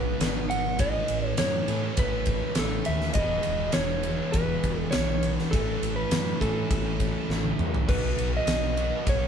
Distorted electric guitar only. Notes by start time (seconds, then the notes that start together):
Already playing: B2 F#3 B3 D#4 F#4
0.79 A2 E3 A3 C#4 E4
1.69 A2 E3 A3 C#4 E4
3.17 E2 B2 E3 G#3 B3 E4
4.05 E2 B2 E3 G#3 B3 E4
5.54 A2 E3 A3 C#4 E4
6.41 A2 E3 A3 C#4 E4
7.88 B2 F#3 B3 D#4 F#4
8.77 B2 F#3 B3 D#4 F#4